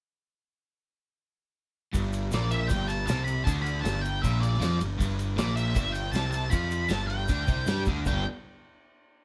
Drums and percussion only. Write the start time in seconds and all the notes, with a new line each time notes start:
1.94 kick, ride, shaker
2.13 ride, shaker
2.32 snare, ride, shaker
2.51 ride, shaker
2.69 kick, ride, shaker
2.89 ride, shaker
3.08 snare, ride, shaker
3.27 ride, shaker
3.47 kick, ride, shaker
3.66 ride, shaker
3.85 snare, ride, shaker
3.97 snare
4.05 ride, shaker
4.24 kick, ride, shaker
4.43 ride, shaker
4.54 snare
4.62 snare, ride, shaker
4.81 ride, shaker
5.00 kick, ride, shaker
5.19 ride, shaker
5.38 snare, ride, shaker
5.49 snare
5.57 ride, shaker
5.75 kick, ride, shaker
5.94 ride, shaker
6.13 snare, ride, shaker
6.32 ride, shaker
6.51 kick, ride, shaker
6.71 ride, shaker
6.89 snare, ride, shaker
7.10 ride
7.28 kick, ride, shaker
7.47 kick, ride, shaker
7.67 snare, ride, shaker
7.85 kick, ride, shaker
8.05 kick, floor tom, shaker